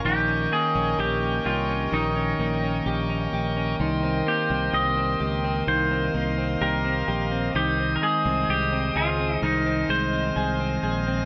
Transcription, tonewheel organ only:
Already playing: A#4 C#6
0.05 D#5 G5
3.81 D#5 C6
5.68 F5
7.55 C5 D#6
9.43 F6

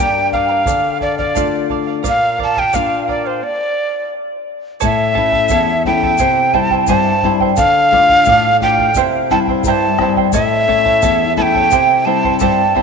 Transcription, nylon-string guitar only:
Already playing: G2 A#3 D4 G4
0.66 D3
1.36 A3 D4 F4
2.06 A#2
2.75 A#3 D4 F4
4.83 A2
5.17 A3 C#4 E4
5.51 E2
5.86 A3 C#4 E4
6.21 C3
6.54 G3 C4 E4
6.88 G2
7.24 G3 C4 E4
7.58 D3
7.92 A3 D4 F4
8.26 A2
8.61 A3 D4 F4
8.96 C3
9.30 G3 C4 E4
9.65 G2
9.98 G3 C4 E4
10.34 A2
10.67 A3 C#4 E4
11.02 E2
11.37 A3 C#4 E4
11.71 C3
12.05 G3 C4 E4
12.41 G2
12.75 G3 C4 E4

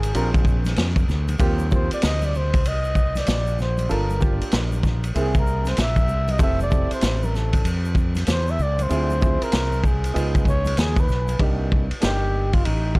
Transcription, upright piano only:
0.14 C4 D4 F4 G4
0.21 G#4
1.39 A#3 C4 F4 G4
1.70 A#3 C4 F4 G4
3.89 A#3 D4 F4 A4
4.20 A#3 D4 F4 G4
5.14 A#3 C4 E4 G#4
6.38 C4 E4 G4 A4
6.69 C4 E4 G4 A4
8.89 C4 E4 F4 G#4
9.20 C4 E4 F4 G#4
10.14 B3 D#4 F4 G#4
11.39 A#3 D4 D#4 G4
12.00 A#3 D4 D#4 G4
12.96 A#3 D4 D#4

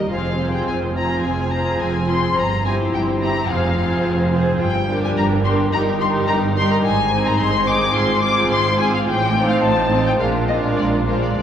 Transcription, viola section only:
Already playing: G3 G4
0.11 C4 F4
0.39 C4 F4
0.95 C4 F4
1.52 C4 F4
2.08 C4 F4
2.64 C4 E4
3.21 C4 E4
3.49 C4 F4
3.77 C4 F4
4.33 C4 F4
4.88 G3 D4
5.44 G3 D4
5.72 G3 D#4
6.00 G3 D#4
6.55 G3 D#4
7.11 C4 D#4
7.66 C4 D#4
7.94 C4 F4
8.22 C4 F4
8.79 C4 F4
9.34 C4 D#4
9.91 C4 D#4
10.19 G#3 D4
10.48 G#3 D4
11.06 G#3 D4

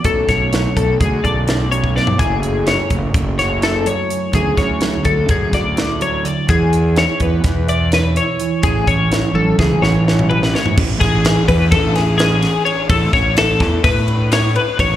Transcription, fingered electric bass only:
0.05 B1
0.29 B1
0.77 B1
1.00 D2
1.25 B1
2.20 F#1
2.91 F#1
3.15 F#1
4.34 D2
4.58 D2
5.05 D2
5.29 F#2
5.53 D2
6.49 E2
7.21 E2
7.44 E2
8.64 A1
8.87 A1
9.34 A1
9.59 C#2
9.82 A1
10.78 A1
11.01 A1
11.49 E2
11.72 A1
12.89 A1
13.14 A1
13.60 E2
13.84 A2
14.79 A1

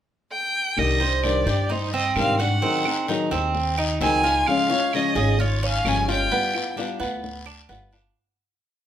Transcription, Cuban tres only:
1.00 C5
1.47 G4
1.70 D#4
1.94 C4
2.40 F#4
2.62 C4
3.09 D#4
3.31 C4
3.78 D#4
4.01 C4
4.24 F4
4.70 C#5
5.15 G#4
5.40 F4
5.63 C#4
6.08 F4
6.32 B3
6.77 D4
7.00 B3
7.46 D4
7.69 B3
7.92 D4

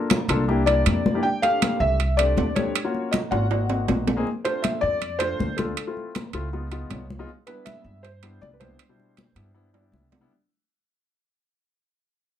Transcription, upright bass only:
0.28 C2
0.86 F2
1.80 C2
2.37 D#2
3.32 G#1
3.88 A#1
4.82 F2
5.39 D2
6.34 C#2
6.90 C2
7.84 G2
8.41 C2
9.35 G2
9.92 C2

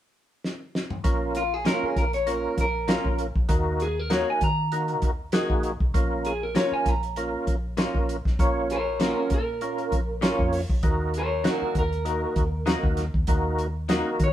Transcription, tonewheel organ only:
1.04 A#3 C#4 F4 A#4
1.66 A#3 C#4 F4 A#4
2.26 A#3 C#4 F4 A#4
2.88 A#3 C#4 F4 A#4
3.48 A#3 D#4 F#4 A#4
4.10 A#3 D#4 F#4 A#4
4.72 A#3 D#4 F#4 A#4
5.33 A#3 D#4 F#4 G#4
5.94 A#3 C#4 F4 A#4
6.56 A#3 C#4 F4 A#4
7.17 A#3 C#4 F4 A#4
7.78 A#3 C#4 F4 A#4
8.39 A#3 C#4 F4 C#5
9.01 A#3 C#4 F4 A#4
9.61 A#3 C#4 F4 A#4
10.22 A#3 C#4 F4 C#5
10.83 A#3 D#4 F#4 A#4
11.44 A#3 D#4 F#4 A#4
12.05 A#3 D#4 F#4 A#4
12.66 A#3 D#4 F#4 A#4
13.28 A#3 D#4 F#4 A#4
13.89 A#3 D#4 F#4 A#4

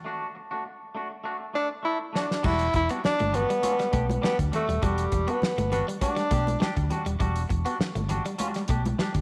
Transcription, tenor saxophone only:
1.55 D4
1.85 E4
2.16 D4
2.46 E4
2.76 E4
3.05 D4
3.35 B3
4.24 B3
4.55 A3
4.85 G3
5.30 B3
5.72 B3
6.02 D4

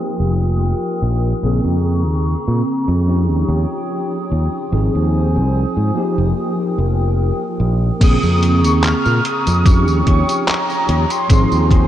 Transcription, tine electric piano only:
Already playing: F3 A#3 D#4 G4
1.42 C#3 A#3 C4 G#4
3.06 F3 C#4 D#4 G4
4.71 F3 C4 D#4 G#4
5.94 F3 A#3 D#4 G4
8.00 C#3 A#3 C4 G#4
9.64 F3 C#4 D#4 G4
11.29 F3 C4 D#4 G#4

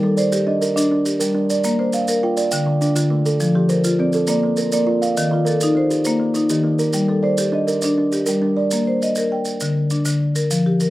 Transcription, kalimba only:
Already playing: A#4
0.03 G3
0.17 D5
0.47 D4
0.61 A#4
0.76 D#5
0.91 D4
1.20 A#4
1.34 D4
1.50 D5
1.79 A#3
1.94 F5
2.23 F4
2.37 D5
2.51 G5
2.66 D3
2.81 D4
2.96 F4
3.10 A3
3.26 A4
3.55 F3
3.69 C5
3.99 C4
4.14 A4
4.29 D5
4.43 A#3
4.58 A#4
4.73 D5
4.87 F4
5.02 F5
5.31 D#3
5.45 A#4
5.75 A#3
5.90 G4
6.05 C5
6.20 A#3
6.34 D#4
6.50 G4
6.64 A#3
6.79 A#4
7.08 G3
7.23 D5
7.52 D4
7.67 A#4
7.82 D#5
7.98 D4
8.12 G4
8.26 A#4
8.42 D4
8.57 D5

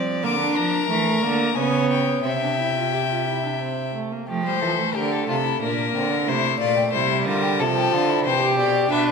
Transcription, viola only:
Already playing: C4
0.24 A#3
0.40 D4
0.90 A3
1.23 A#3
1.57 B3
2.25 C4
2.42 D4
2.60 E4
2.76 F4
2.93 G4
3.11 F4
3.27 E4
3.44 D4
3.61 C4
3.95 A3
4.12 A#3
4.29 A3
4.46 G3
4.63 F3
4.79 A3
5.62 A#3
6.29 A3
6.95 G3
7.60 F3
8.26 E3
8.41 G4
8.91 D4

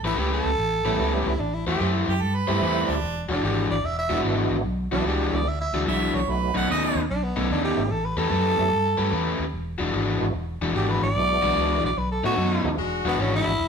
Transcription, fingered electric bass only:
0.03 A1
0.17 C#2
0.44 C#2
0.58 A1
0.85 A1
0.99 C#2
1.26 C#2
1.40 A1
1.67 E2
1.80 F#2
2.08 F#2
2.21 G2
2.49 G2
2.61 E2
2.89 D2
3.02 E1
3.29 E1
3.43 G#1
3.70 G#1
3.84 E1
4.11 E1
4.25 G#1
4.51 G#1
4.64 B1
4.92 B1
5.05 C#2
5.32 C#2
5.45 D2
5.73 D2
5.87 B1
6.14 B1
6.28 B1
6.55 B1
6.69 D#2
6.95 D#2
7.09 B1
7.37 B1
7.50 D#2
7.77 G#1
7.90 A1
8.17 E2
8.31 F#2
8.58 F#2
8.72 G2
8.98 G2
9.12 E2
9.39 D#2
9.53 E1
9.80 E1
9.94 G#1
10.20 G#1
10.34 E1
10.61 E1
10.75 G#1
11.02 G#1
11.15 B1
11.43 B1
11.56 C#2
11.84 A#1
11.96 B1
12.23 A2
12.37 F#2
12.64 D#2
12.78 E1
13.05 E1
13.18 G#1
13.46 G#1
13.59 E1

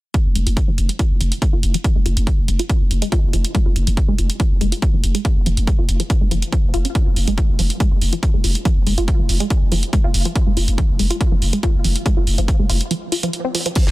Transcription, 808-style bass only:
0.25 F1
0.35 F1
0.47 F1
0.68 F1
0.78 F1
1.10 F1
1.21 F1
1.53 F1
1.63 F1
1.96 F1
2.06 F1
2.17 F1
2.38 F1
2.48 F1
2.81 F1
2.91 F1
3.23 F1
3.33 F1
3.66 F1
3.76 F1
3.87 F1
4.08 F1
4.18 F1
4.51 F1
4.61 F1
4.93 F1
5.04 F1
5.36 F1
5.46 F1
5.57 F1
5.79 F1
5.89 F1
6.21 F1
6.31 F1
6.64 F1
6.74 F1
7.06 F1
7.16 F1
7.27 F1
7.49 F1
7.59 F1
7.91 F1
8.01 F1
8.34 F1
8.44 F1
8.76 F1
8.87 F1
8.98 F1
9.19 F1
9.29 F1
9.61 F1
9.72 F1
10.04 F1
10.14 F1
10.47 F1
10.57 F1
10.68 F1
10.89 F1
10.99 F1
11.32 F1
11.42 F1
11.74 F1
11.84 F1
12.17 F1
12.27 F1
12.38 F1
12.59 F1
12.69 F1
13.87 F1

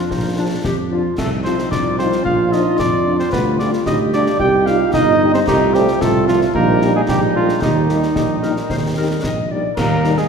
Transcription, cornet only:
Already playing: F4
1.18 A4
1.44 C5
1.71 D5
1.99 C5
2.25 F5
2.53 D#5
2.79 D5
3.19 C5
3.32 B4
3.59 D5
3.86 D#5
4.13 D5
4.40 G5
4.66 F5
4.94 D#5
5.34 C5
5.47 D#4
5.74 G4
6.01 A4
6.28 F4
6.54 A#4
6.96 G#4
7.09 G4
7.36 F4
7.62 D#4
9.77 A#4
10.18 G#4

